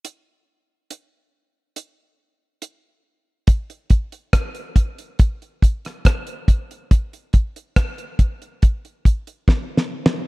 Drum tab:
HH |x-----------x-----------x-----------x-----------|x--x--x--x--x--x--x--x--x--x--x--x--x--x--x--x--|x--x--x--x--x--x--x--x--x--x--x--x--------------|
SD |------------------------------------------------|------------r--------------------r--r-----------|------------r-----------------------o---o---o---|
BD |------------------------------------------------|o-----o-----o-----o-----o-----o-----o-----o-----|o-----o-----o-----o-----o-----o-----o-----------|